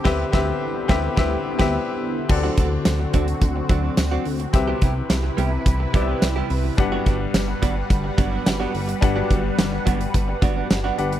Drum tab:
CC |x----------x----|x---------------|----------------|----------------|
HH |----------------|--x-x-xxx-x-x-ox|x-x-x-x-x-x-x-o-|x-x-x-x-x-x-x-ox|
TB |----------------|----x-------x---|----x-------x---|----x-------x---|
SD |o-o---o-o--o----|----o-------o---|----o-------o---|----o-------o---|
BD |o-o---o-o--o----|o-o---o-o-o-----|o-o-----o-o-----|o-o---o-o-o-----|

CC |----------------|
HH |x-x-x-xxx-x-x-xx|
TB |----x-------x---|
SD |----o-------o---|
BD |o-o---o-o-o-----|